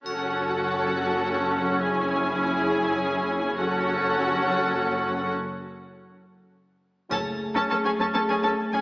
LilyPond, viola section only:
\new Staff \with { instrumentName = "Viola section" } { \time 6/8 \key fis \minor \tempo 4. = 68 << { fis'2. | e'2. | fis'2. | r2. |
r2. | } \\ { cis'2.~ | cis'2. | cis'2. | r2. |
cis'16 r8 cis'16 cis'16 cis'16 cis'16 cis'16 cis'16 cis'16 r16 cis'16 | } >> }